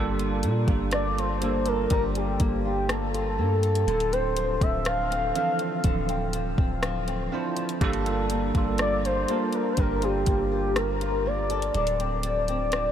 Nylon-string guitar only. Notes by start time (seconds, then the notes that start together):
Already playing: G3
0.19 F4
0.44 A#3
0.68 F4
0.93 A#3
1.17 F4
1.42 A#3
1.66 A4
1.91 G3
2.16 F4
2.40 A#3
2.65 F4
2.89 A#3
3.14 F4
3.39 A#3
3.63 A4
3.87 D3
4.12 C4
4.37 F3
4.61 C4
4.85 F3
5.11 C4
5.35 F3
5.84 D3
6.09 C4
6.34 F3
6.59 C4
6.83 F3
7.08 C4
7.32 F3
7.57 E4
7.81 G3
8.06 F4
8.30 A#3
8.55 F4
8.79 A#3
9.04 F4
9.29 A#3
9.78 G3
10.02 F4
10.27 A#3
10.52 F4
10.76 A#3
11.01 F4
11.26 A#3
11.50 A4
11.75 D3
12.00 C4
12.24 F3
12.49 C4
12.73 F3